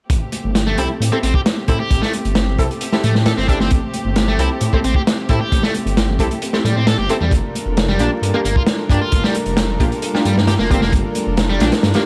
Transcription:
0.10 A1 A3 C4 G4, kick, closed hi-hat
0.32 closed hi-hat, high conga
0.44 G1
0.55 snare, closed hi-hat
0.67 A3, low conga
0.78 C2 C4 E4 G4 A4, closed hi-hat, high conga
1.00 A2, closed hi-hat
1.12 C4 E4 G4 A4, high conga
1.23 A1 C4, closed hi-hat
1.34 G4, kick
1.45 snare, closed hi-hat, high conga
1.68 A2 C4 E4 G4 A4, kick, closed hi-hat
1.80 G4, high conga
1.90 A1, kick, closed hi-hat
2.02 A3, snare
2.13 closed hi-hat, high conga
2.25 G1, closed hi-hat
2.35 snare, closed hi-hat
2.58 C2 C4 E4 G4 A4, kick, closed hi-hat, high conga
2.71 closed hi-hat
2.81 closed hi-hat
2.92 C4 E4 G4 A4, snare, high conga
3.03 A2 A3, closed hi-hat, low conga
3.15 A2, snare
3.25 A4, snare, closed hi-hat, high conga
3.37 G1 C4, snare
3.48 A1 C4 D4 E4 G4 A4, kick, closed hi-hat
3.60 G1 C4, snare, high conga, low conga
3.71 A1, kick, closed hi-hat
3.94 closed hi-hat, high conga
4.05 G1
4.16 snare, closed hi-hat
4.28 A3, low conga
4.38 C2 C4 E4 G4 A4, closed hi-hat, high conga
4.61 A2, closed hi-hat
4.73 C4 E4 G4 A4, kick, high conga
4.84 A1 C4, closed hi-hat
4.94 G4, kick
5.07 snare, closed hi-hat, high conga
5.29 A2 C4 E4 G4 A4, kick, closed hi-hat
5.40 G4, high conga
5.52 A1, kick, closed hi-hat
5.63 A3, snare
5.74 closed hi-hat, high conga
5.85 G1, closed hi-hat
5.97 snare, closed hi-hat
6.09 low conga
6.19 C2 C4 E4 G4 A4, kick, closed hi-hat, high conga
6.31 closed hi-hat
6.42 closed hi-hat
6.53 C4 E4 G4 A4, snare, high conga
6.64 A2 G3, closed hi-hat, low conga
6.76 A2 C4
6.87 A4, snare, closed hi-hat, high conga
6.98 G1 G4
7.09 C4 E4 G4 A4, closed hi-hat
7.21 E2 G3, high conga, low conga
7.31 G1 G3 D4 F4 A4 A#4, kick, closed hi-hat
7.55 closed hi-hat, high conga
7.66 F1
7.77 snare, closed hi-hat
7.89 G3, low conga
7.99 A#1 A#3 D4 F4 G4, closed hi-hat, high conga
8.22 G2, closed hi-hat
8.34 A#3 D4 F4 G4, high conga
8.45 G1 A#3, closed hi-hat
8.56 F4, kick
8.66 snare, closed hi-hat, high conga
8.89 G2 A#3 D4 F4 G4, kick, closed hi-hat
9.01 F4, high conga
9.12 G1, kick, closed hi-hat
9.24 G3, snare
9.35 closed hi-hat, high conga
9.46 F1, closed hi-hat
9.57 snare, closed hi-hat
9.79 A#1 A#3 D4 F4 G4, kick, closed hi-hat, high conga
9.92 closed hi-hat
10.02 closed hi-hat
10.14 A#3 D4 F4 G4, snare, high conga
10.25 G2 G3, closed hi-hat, low conga
10.36 G2, snare
10.47 G4, snare, closed hi-hat, high conga
10.59 F1 A#3, snare
10.70 G1 A#3 C4 D4 F4 G4, kick, closed hi-hat
10.81 F1 A#3, snare, high conga, low conga
10.92 G1, kick, closed hi-hat
11.15 closed hi-hat, high conga
11.27 F1
11.37 snare, closed hi-hat
11.50 G3, low conga
11.60 A#1 A#3 D4 F4 G4, snare, closed hi-hat, high conga
11.72 snare, closed hi-hat
11.83 G2, snare, closed hi-hat
11.94 A#3 D4 F4 G4, snare, closed hi-hat, high conga

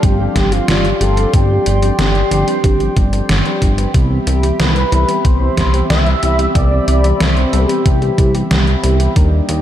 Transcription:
Already playing: G4 D5 F5 C6
0.03 G1 F3 G3 C4 D4 G4, kick, closed hi-hat
0.19 F3 G3 C4 D4 G4
0.36 G1, kick, snare, closed hi-hat
0.52 F3 G3 C4 D4 F4 G4, closed hi-hat
0.68 G1 F3 G3 C4 D4 G4, snare, closed hi-hat
0.85 closed hi-hat
1.01 G1 F3 G3 C4 D4 G4 A4, closed hi-hat
1.17 F3 G3 C4 D4 G4, closed hi-hat
1.33 G1 F3 G3 C4 D4 G4, kick, closed hi-hat
1.50 F3 G3 C4 D4 G4
1.66 G1, closed hi-hat
1.82 F3 G3 C4 D4 G4, closed hi-hat
1.99 G1 F3 G3 C4 D4 A4, snare, closed hi-hat
2.15 closed hi-hat
2.31 G1 F3 G3 C4 D4 A4, closed hi-hat
2.48 F3 G3 C4 D4 B4, closed hi-hat
2.64 G1 F3 G3 C4 D4 G4, kick, closed hi-hat
2.80 F3 G3 C4 D4 G4, closed hi-hat
2.96 G1 F3 G3 C4 D4 G4, kick, closed hi-hat
3.13 F3 G3 C4 D4 A4, closed hi-hat
3.29 G1, snare, closed hi-hat
3.45 F3 G3 C4 D4 B4, closed hi-hat
3.62 G1, kick, closed hi-hat
3.78 F3 G3 C4 D4 B4, closed hi-hat
3.94 C2 E3 G3 B3 C4 G4 B5, kick, closed hi-hat
4.11 E3 G3 B3 C4 G4
4.27 C2, closed hi-hat
4.43 E3 G3 B3 C4 G4, closed hi-hat
4.59 C2 E3 G3 B3 C4 A4 B4, snare, closed hi-hat
4.76 closed hi-hat
4.92 C2 E3 G3 B3 C4 A4, closed hi-hat
5.08 E3 G3 B3 C4 B4, closed hi-hat
5.25 C2 E3 G3 B3 C4 G4 C5, kick, closed hi-hat
5.41 E3 G3 B3 C4 G4
5.57 C2, kick, snare, closed hi-hat
5.74 E3 G3 B3 C4 G4, closed hi-hat
5.90 C2 E3 G3 B3 C4 G4 E5, snare, closed hi-hat
6.06 closed hi-hat
6.23 C2 E3 G3 B3 C4 G4, closed hi-hat
6.39 E3 G3 B3 C4 G4, closed hi-hat
6.55 C2 E3 G3 B3 C4 G4 D5, kick, closed hi-hat
6.71 E3 G3 B3 C4 G4
6.88 C2, closed hi-hat
7.04 E3 G3 B3 C4 G4, closed hi-hat
7.20 C2 E3 G3 B3 C4 A4 C5, snare, closed hi-hat
7.37 closed hi-hat
7.53 C2 E3 G3 B3 C4 G4 A4, closed hi-hat
7.69 E3 G3 B3 C4 B4, closed hi-hat
7.86 C2 E3 G3 B3 C4 G4, kick, closed hi-hat
8.02 E3 G3 B3 C4 G4, closed hi-hat
8.18 C2, kick, closed hi-hat
8.34 E3 G3 B3 C4 G4, closed hi-hat
8.51 C2 E3 G3 B3 C4 G4, snare, closed hi-hat
8.67 closed hi-hat
8.83 C2 E3 G3 B3 C4 G4, closed hi-hat
9.00 E3 G3 B3 C4 G4, closed hi-hat
9.16 D#2 G3 A#3 D4 D#4 A#4 D#5, kick, closed hi-hat
9.32 G3 D4 D#4 A#4
9.49 D#2, closed hi-hat

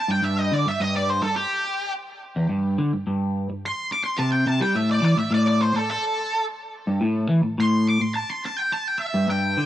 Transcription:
0.00 A5
0.08 G2 G5
0.22 G2 E5
0.39 D#5
0.52 D3 D5
0.66 G2 E5
0.80 G2 D#5
0.96 D5
1.10 C5
1.22 G2 A4
1.36 G4
2.36 E2
2.49 G2
2.78 D3
2.93 G2
3.07 G2
3.50 G2
3.66 C6
3.92 D6
4.04 C6
4.18 C3 A5
4.32 G5
4.46 C3 A5
4.60 G3 G5
4.75 A2 E5
4.91 D5
5.02 E3 D5
5.17 A2 E5
5.31 A2 D5
5.47 D5
5.61 C5
5.74 A2 A4
5.91 A4
6.87 G2
7.01 A2
7.29 E3
7.43 A2
7.58 A2 C6
7.89 D6
8.00 A2 C6
8.14 A5
8.30 C6
8.46 A5
8.57 G5
8.72 A5
8.88 G5
8.98 E5
9.14 G2
9.28 G2 G5
9.57 D3

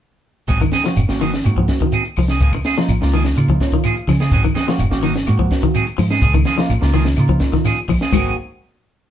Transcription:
0.48 G#1 F#3 C4 D#4 G#4, kick, closed hi-hat, shekere
0.60 D#3, muted clean electric guitar stroke, kick, closed hi-hat, claves
0.72 C4 D#4 G#4, snare, closed hi-hat, shekere
0.84 F3 A#3 C4 F#4, snare, closed hi-hat
0.96 F#1, closed hi-hat, claves, shekere
1.08 G#1 A#3 C4 F#4, muted clean electric guitar stroke, snare, closed hi-hat
1.20 D#3 F#3 C4 D#4 G#4, open hi-hat, shekere
1.33 muted clean electric guitar stroke, snare
1.44 G#2 A#3 C4 F#4, muted clean electric guitar stroke, closed hi-hat, claves, shekere
1.57 F3, kick
1.68 muted clean electric guitar stroke, kick, snare, closed hi-hat, shekere
1.81 D#3, kick, closed hi-hat
1.92 C4 D#4 G#4, closed hi-hat, claves, shekere
2.05 muted clean electric guitar stroke, closed hi-hat
2.16 C2 F3, muted clean electric guitar stroke, open hi-hat, claves, shekere
2.28 C4 D#4 G#4, snare, closed hi-hat
2.40 C#2 F3 A#3 G#4, muted clean electric guitar stroke, kick, closed hi-hat, shekere
2.53 muted clean electric guitar stroke, kick, closed hi-hat, claves
2.64 F4 G#4, snare, closed hi-hat, shekere
2.77 F3 A#3 D#4 F4, muted clean electric guitar stroke, snare, closed hi-hat
2.88 A#1, closed hi-hat, claves, shekere
3.01 C#2 A#3 D#4 F4, muted clean electric guitar stroke, snare
3.12 D#3 F3 A#3 F4 G#4, open hi-hat, shekere
3.25 muted clean electric guitar stroke, snare
3.36 C#3 A#3 D#4 F4, muted clean electric guitar stroke, closed hi-hat, claves, shekere
3.49 F3, kick, closed hi-hat
3.60 C#5, muted clean electric guitar stroke, kick, snare, closed hi-hat, shekere
3.72 D#3, kick, closed hi-hat
3.84 F3 A#3 F4 G#4 F5, closed hi-hat, claves, shekere
3.97 muted clean electric guitar stroke, closed hi-hat
4.08 C#3 F3 G#5, muted clean electric guitar stroke, kick, snare, open hi-hat, claves, shekere
4.20 A#3 F4 G#4, snare, closed hi-hat
4.31 G#1 F#3 C4 D#4 G#4, kick, closed hi-hat, shekere
4.44 D#3, muted clean electric guitar stroke, kick, closed hi-hat, claves
4.55 F#3 C4 D#4 G#4, snare, closed hi-hat, shekere
4.67 F3 A#3 C4 F#4, muted clean electric guitar stroke, snare, closed hi-hat
4.78 F#1, closed hi-hat, claves, shekere
4.91 G#1 A#3 C4 F#4, muted clean electric guitar stroke, snare, closed hi-hat
5.02 D#3 F#3 C4 D#4, open hi-hat, shekere
5.15 muted clean electric guitar stroke, snare
5.26 G#2 A#3 C4 F#4, muted clean electric guitar stroke, closed hi-hat, claves, shekere
5.39 F3, kick
5.51 muted clean electric guitar stroke, kick, snare, closed hi-hat, shekere
5.63 D#3, kick, closed hi-hat
5.74 F#3 C4 D#4 G#4, closed hi-hat, claves, shekere
5.87 muted clean electric guitar stroke, closed hi-hat
5.98 G#2 F3, muted clean electric guitar stroke, open hi-hat, claves, shekere
6.10 C4 D#4 G#4, snare
6.22 C#2 F3 G#4, muted clean electric guitar stroke, kick, closed hi-hat, shekere
6.34 D#3, muted clean electric guitar stroke, kick, closed hi-hat, claves
6.45 F3 A#3 F4 G#4, snare, closed hi-hat, shekere
6.56 F3 A#3 D#4 F4, muted clean electric guitar stroke, snare, closed hi-hat
6.69 A#1, closed hi-hat, claves, shekere
6.81 C#2 A#3 D#4 F4, muted clean electric guitar stroke, snare
6.93 D#3 F3 A#3 F4 G#4, open hi-hat, shekere
7.05 muted clean electric guitar stroke, snare
7.16 C#3 A#3 D#4 F4, muted clean electric guitar stroke, closed hi-hat, claves, shekere
7.29 F3, kick, closed hi-hat
7.40 muted clean electric guitar stroke, kick, snare, closed hi-hat, shekere
7.53 D#3, kick, snare, closed hi-hat
7.65 F3 F4 G#4, muted clean electric guitar stroke, snare, closed hi-hat, claves, shekere
7.77 muted clean electric guitar stroke, closed hi-hat
7.88 A#1 F3, muted clean electric guitar stroke, kick, open hi-hat, claves, shekere
8.01 A#3 F4 G#4, snare, closed hi-hat
8.12 G#1 G#2 F#3 A#3 C4 D#4 F#4 G#4, kick, claves, shekere

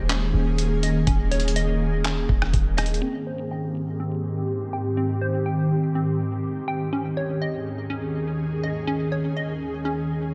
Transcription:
Already playing: D#1 D#3 A#3 C#4 G#4 C#5 D#5
0.09 C#4, clap, closed hi-hat
0.34 D#1
0.58 closed hi-hat
0.83 D#5, closed hi-hat
1.07 D#1 C#4, kick, closed hi-hat
1.31 C#5, closed hi-hat
1.40 closed hi-hat
1.48 closed hi-hat
1.56 D#5, closed hi-hat
2.05 C#4, clap, closed hi-hat
2.29 D#1, kick
2.42 cross-stick
2.53 D#1, kick, closed hi-hat
2.77 D#5, cross-stick, closed hi-hat
2.86 closed hi-hat
2.94 closed hi-hat
3.02 G#2 D#3 C4 G4
3.27 C5
3.51 G5
4.00 C4
4.73 G5
4.97 C4
5.21 C5
5.46 G5
5.95 C4
6.68 G5
6.92 D#2 C#4 G#4
7.17 C#5
7.42 D#5
7.90 C#4
8.63 D#5
8.87 C#4
9.12 C#5
9.37 D#5
9.85 C#4

